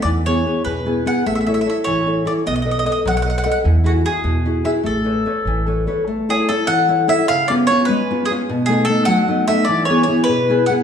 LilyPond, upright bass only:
\new Staff \with { instrumentName = "Upright bass" } { \clef bass \time 6/8 \key a \major \tempo 4. = 100 e,4. e,4. | a,,4. a,,4. | b,,4. b,,4. | e,4. e,4. |
a,,4. a,,4. | r2. | r2. | r2. |
r2. | }